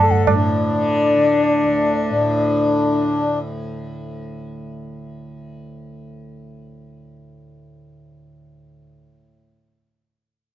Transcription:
Already playing: tanpura D2 A2 D3, bansuri A5
0.03 harmonium A4
0.11 bansuri F#5, tabla ge
0.26 tanpura A2, bansuri D5, tabla na, tabla ge
0.35 harmonium D4
0.73 tanpura D3
1.16 tanpura D3
1.64 tanpura D2
2.11 tanpura A2

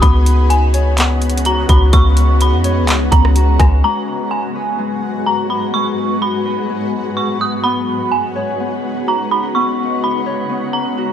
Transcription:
Already playing: ambient pad D#4, harp F#4 B4
0.02 808-style bass C#2, ambient pad C#3 G#3 B3 F#4, harp B3, synth texture C#4 B4 F#5, synth bell B5, kick, closed hi-hat
0.26 closed hi-hat
0.50 synth bell G#5, closed hi-hat
0.74 harp C#5, closed hi-hat
0.98 harp B3, clap, closed hi-hat
1.22 closed hi-hat
1.30 closed hi-hat
1.38 closed hi-hat
1.45 harp F#4, synth bell A#5, closed hi-hat
1.69 808-style bass C#2, harp F#4, synth bell B5, kick, closed hi-hat
1.93 808-style bass C#2, harp B3, ambient pad C#4, synth bell C#6, kick, closed hi-hat
2.17 closed hi-hat
2.41 synth bell B5, closed hi-hat
2.52 808-style bass F2
2.64 harp C#5, closed hi-hat
2.82 808-style bass C#2
2.88 harp B3, clap, closed hi-hat
3.12 808-style bass C#2, synth bell A#5, kick, closed hi-hat
3.25 cross-stick
3.36 harp F#4, closed hi-hat
3.59 808-style bass C#2, harp F#4, synth bell G#5, kick, cross-stick, closed hi-hat
3.84 ambient pad G#2 F#3 G#3 B3 F#4, harp G#3, synth texture B3 G#4 F#5, synth bell A#5
4.31 synth bell G#5
4.55 harp B4
4.79 harp G#3
5.26 harp F#4, synth bell A#5
5.50 harp F#4, synth bell B5
5.74 harp G#3, ambient pad F#4, synth bell C#6
6.22 synth bell B5
6.45 harp B4
6.69 harp G#3
7.17 harp F#4, synth bell C#6
7.41 harp F#4, synth bell D#6
7.64 ambient pad C#3 D#4 F#4, harp B3, synth texture C#4 B4, synth bell B5
8.12 synth bell G#5
8.36 harp C#5
8.60 harp B3
9.08 harp F#4, synth bell A#5
9.31 harp F#4, synth bell B5
9.55 harp B3, synth bell C#6
10.04 synth bell B5
10.26 harp C#5
10.49 harp B3
10.73 synth bell A#5
10.98 harp F#4

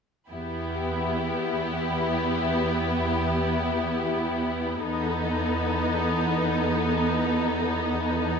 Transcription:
0.30 cello section E2, viola section B3, violin section E4 G4
4.82 cello section E2, viola section B3, violin section D#4 A4

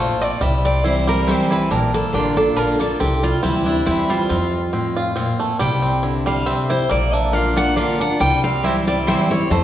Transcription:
Already playing: upright bass A#1, steel-string acoustic guitar A#2 C5, five-string banjo A3 F4
0.21 five-string banjo C4, steel-string acoustic guitar D5
0.41 upright bass C2, steel-string acoustic guitar C3 E5, five-string banjo G3
0.65 five-string banjo C4, steel-string acoustic guitar D5
0.84 steel-string acoustic guitar E3 G3 C4 E4 C5, five-string banjo E4
1.07 five-string banjo G3, steel-string acoustic guitar A#4
1.27 steel-string acoustic guitar E3 G3 C4 E4 C5, five-string banjo C4
1.51 five-string banjo E4, steel-string acoustic guitar B4
1.71 upright bass A#1, steel-string acoustic guitar A#2 A#4, five-string banjo D4
1.94 five-string banjo A#3, steel-string acoustic guitar A4
2.13 upright bass A1, steel-string acoustic guitar D3 A#3 D4 F4 G4, five-string banjo D4
2.36 five-string banjo D4, steel-string acoustic guitar D4 F4 A4
2.56 upright bass A#1, steel-string acoustic guitar D3 A#3 D4 F4 A#4, five-string banjo D4
2.80 five-string banjo A#3, steel-string acoustic guitar D4 F4 A4
3.00 upright bass C2, steel-string acoustic guitar C3 G4, five-string banjo C4
3.23 five-string banjo G3, steel-string acoustic guitar F4
3.43 upright bass D2, steel-string acoustic guitar E3 G3 C4 E4, five-string banjo C4
3.65 steel-string acoustic guitar C4 D4 E4, five-string banjo E4
3.86 upright bass E2, steel-string acoustic guitar E3 G3 C4 E4, five-string banjo C4
4.10 five-string banjo G3, steel-string acoustic guitar F4
4.29 steel-string acoustic guitar F2, upright bass F2, five-string banjo C4
4.73 steel-string acoustic guitar A2, five-string banjo C4
4.97 five-string banjo F4
5.16 steel-string acoustic guitar A#2, five-string banjo C4
5.39 five-string banjo A3
5.59 upright bass C2, steel-string acoustic guitar C3 G5, five-string banjo G3
5.82 five-string banjo C4
6.03 steel-string acoustic guitar D3, five-string banjo E4
6.26 five-string banjo G3, steel-string acoustic guitar F5
6.46 steel-string acoustic guitar C3 E5, five-string banjo C4
6.70 five-string banjo E4, steel-string acoustic guitar C5
6.89 upright bass A#1, steel-string acoustic guitar A#2 D5, five-string banjo A#3
7.13 five-string banjo D4, steel-string acoustic guitar E5
7.32 steel-string acoustic guitar D3 A#3 D4 F4 F5, five-string banjo D4
7.55 five-string banjo A#3, steel-string acoustic guitar D4 F4 F#5
7.76 steel-string acoustic guitar D3 A#3 D4 F4 F5, five-string banjo D4
7.99 five-string banjo D4, steel-string acoustic guitar D4 F4 F#5
8.20 upright bass C2, steel-string acoustic guitar C3 G5, five-string banjo G3
8.44 five-string banjo C4, steel-string acoustic guitar F5
8.63 steel-string acoustic guitar E3 G3 C4 E4 E5, mandolin C4 E4 C5 G5, five-string banjo E4
8.87 five-string banjo G3, steel-string acoustic guitar C4 E4 D5
9.07 steel-string acoustic guitar E3 G3 C4 E4 E5, mandolin C4 E4 C5 G5, five-string banjo C4
9.30 steel-string acoustic guitar C4 E4 C#5, five-string banjo E4
9.50 steel-string acoustic guitar F2 C5, upright bass F2, five-string banjo A3

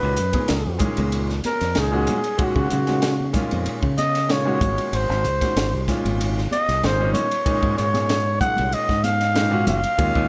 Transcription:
Already playing: grand piano A#2 D#3 G#3 C#4 F#4, muted trumpet B4
0.03 fingered electric bass C#2
0.16 fingered electric bass F#2, hi-hat pedal, ride
0.33 grand piano A#2 D#3 G#3 C#4 G#4, kick, ride, high conga
0.48 fingered electric bass C#2, snare, ride
0.65 fingered electric bass F2, grand piano C#4 F#4
0.78 grand piano A#2 D#3 G#3 C#4 G#4, muted fingered electric bass stroke, kick, hi-hat pedal, ride, low conga
0.97 fingered electric bass C#2, ride, high conga
1.12 ride
1.30 snare
1.42 grand piano C#4 F#4, muted trumpet A#4, snare, hi-hat pedal, ride, high conga
1.61 fingered electric bass F2, snare, ride
1.75 fingered electric bass C#2, grand piano A#2 D#3 G#3 C#4 D#4, snare, ride
1.80 muted trumpet G#4
1.92 grand piano A#2 D#3 G#3 C#4 F#4
2.07 hi-hat pedal, ride, high conga, low conga
2.23 grand piano C#4, ride
2.37 grand piano A#2 D#3 G#3 C#4 F#4, kick, ride
2.44 muted trumpet F#4
2.56 fingered electric bass C#3, kick
2.70 fingered electric bass C#3, hi-hat pedal, ride, low conga
2.87 grand piano A#2 D#3 G#3 C#4 F#4, snare, ride, high conga
3.02 snare, ride
3.19 grand piano C#4 D#4, high conga
3.33 grand piano A#2 D#3 G#3 C#4 F4, muted fingered electric bass stroke, kick, snare, hi-hat pedal, ride, low conga
3.51 fingered electric bass F2, ride, high conga
3.66 muted fingered electric bass stroke, ride
3.83 fingered electric bass C#3, kick
3.97 grand piano C#4 G#4, muted trumpet D#5, snare, hi-hat pedal, ride, high conga
4.15 snare, ride
4.28 grand piano A#2 D#3 G#3 C#4 F4, muted trumpet C#5, snare, ride
4.45 grand piano A#2 D#3 G#3 C#4 F#4
4.60 fingered electric bass G#1, grand piano A#2 D#3 G#3 C#4 F#4, kick, hi-hat pedal, ride, high conga, low conga
4.78 ride
4.93 fingered electric bass G#1, muted trumpet C5, ride
5.09 fingered electric bass G#1, snare
5.24 fingered electric bass C#2, hi-hat pedal, ride
5.41 grand piano A#2 D#3 G#3 C#4 F#4, kick, snare, ride, high conga
5.56 fingered electric bass G#1, snare, ride
5.73 fingered electric bass C2, grand piano C#4 F#4
5.88 grand piano A#2 D#3 G#3 C#4 F4, muted fingered electric bass stroke, kick, snare, hi-hat pedal, ride, low conga
6.04 fingered electric bass G#1, ride, high conga
6.21 ride
6.38 snare
6.51 grand piano C#4 F#4, muted trumpet D#5, hi-hat pedal, ride, high conga
6.68 fingered electric bass C2, snare, ride
6.83 fingered electric bass G#1, grand piano A#2 D#3 G#3 C#4 D#4, muted trumpet C5, snare, ride
6.99 grand piano A#2 D#3 G#3 C#4 D#4
7.14 muted trumpet C#5, hi-hat pedal, ride, high conga, low conga
7.31 ride
7.45 grand piano A#2 D#3 G#3 C#4 D#4, kick, ride
7.63 fingered electric bass G#2, kick
7.78 fingered electric bass G#2, muted trumpet C#5, hi-hat pedal, ride
7.93 grand piano A#2 D#3 G#3 C#4 G#4, snare, ride, high conga
8.09 snare, ride
8.25 grand piano C#4 G#4
8.40 grand piano A#2 D#3 G#3 C#4 G#4, muted trumpet F#5, muted fingered electric bass stroke, kick, hi-hat pedal, ride, low conga
8.57 fingered electric bass C2, ride, high conga
8.72 muted trumpet D#5, muted fingered electric bass stroke, ride
8.89 fingered electric bass G#2, kick, snare
9.04 grand piano C#4 D#4, muted trumpet F5, snare, hi-hat pedal, ride, high conga
9.21 snare, ride
9.34 grand piano A#2 D#3 G#3 C#4 D#4, snare, ride
9.51 grand piano A#2 D#3 G#3 C#4 F#4
9.67 fingered electric bass F#1, muted trumpet F5, hi-hat pedal, ride, high conga, low conga
9.84 grand piano F#4, ride
9.98 fingered electric bass D#2, grand piano A#2 D#3 G#3 C#4 F4, kick, ride
10.15 fingered electric bass D#2, kick

